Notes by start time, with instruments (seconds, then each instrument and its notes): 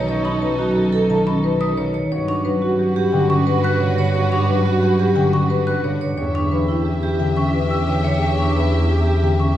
Already playing: double bass B1, harp D#3 F#3, string section D#4 A4, vibraphone C#5
0.08 harp C#4, soprano saxophone D#4, marimba C#5
0.25 vibraphone D#4, soprano saxophone D#4, xylophone B5
0.42 harp F#3, soprano saxophone D#4, marimba B4
0.59 soprano saxophone D#4, vibraphone F#4
0.76 soprano saxophone D#4, marimba A4
0.93 soprano saxophone D#4, vibraphone A4
1.10 harp D#3, soprano saxophone D#4, marimba A5
1.26 vibraphone C#4, soprano saxophone D#4, xylophone B5
1.44 soprano saxophone D#4, marimba B4
1.61 soprano saxophone D#4, vibraphone B4, xylophone D#6
1.77 harp D#3, soprano saxophone D#4, marimba C#5
1.94 vibraphone C#5
2.11 double bass G2, harp C#4, soprano saxophone F#4, string section F#4 B4, marimba C#5
2.28 vibraphone D4, soprano saxophone F#4, xylophone C#6
2.45 harp F#3, soprano saxophone F#4, marimba B4
2.62 vibraphone F#4, soprano saxophone F#4
2.79 soprano saxophone F#4, marimba G4
2.96 soprano saxophone F#4, vibraphone G4
3.12 harp D3, soprano saxophone F#4, marimba G5
3.30 vibraphone C#4, soprano saxophone F#4, xylophone C#6
3.47 soprano saxophone F#4, marimba B4
3.64 soprano saxophone F#4, vibraphone B4, xylophone F#6
3.80 harp D3, soprano saxophone F#4, marimba C#5
3.98 soprano saxophone F#4, vibraphone C#5
4.14 harp C#4, soprano saxophone F#4, marimba C#5
4.31 vibraphone D4, soprano saxophone F#4, xylophone C#6
4.48 harp F#3, soprano saxophone F#4, marimba B4
4.66 vibraphone F#4, soprano saxophone F#4
4.83 soprano saxophone F#4, marimba G4
4.99 soprano saxophone F#4, vibraphone G4
5.16 harp D3, soprano saxophone F#4, marimba G5
5.33 vibraphone C#4, soprano saxophone F#4, xylophone C#6
5.50 soprano saxophone F#4, marimba B4
5.67 soprano saxophone F#4, vibraphone B4, xylophone F#6
5.84 harp D3, soprano saxophone F#4, marimba C#5
6.01 vibraphone C#5
6.17 double bass E2, harp C#4, soprano saxophone G4, string section G4 E5, marimba C#5
6.35 vibraphone D4, soprano saxophone G4, xylophone C#6
6.51 harp E3, soprano saxophone G4, marimba B4
6.68 vibraphone E4, soprano saxophone G4
6.85 soprano saxophone G4, marimba G4
7.03 soprano saxophone G4, vibraphone G4
7.20 harp D3, soprano saxophone G4, marimba G5
7.37 vibraphone C#4, soprano saxophone G4, xylophone C#6
7.53 soprano saxophone G4, marimba B4
7.70 soprano saxophone G4, vibraphone B4, xylophone E6
7.87 harp D3, soprano saxophone G4, marimba C#5
8.04 soprano saxophone G4, vibraphone C#5, xylophone G5
8.21 harp C#4, soprano saxophone G4, marimba C#5
8.39 vibraphone D4, soprano saxophone G4, xylophone C#6
8.55 harp E3, soprano saxophone G4, marimba B4
8.72 vibraphone E4, soprano saxophone G4
8.89 soprano saxophone G4, marimba G4
9.06 vibraphone G4, soprano saxophone G4
9.22 harp D3, soprano saxophone G4, marimba G5
9.40 vibraphone C#4, soprano saxophone G4, xylophone C#6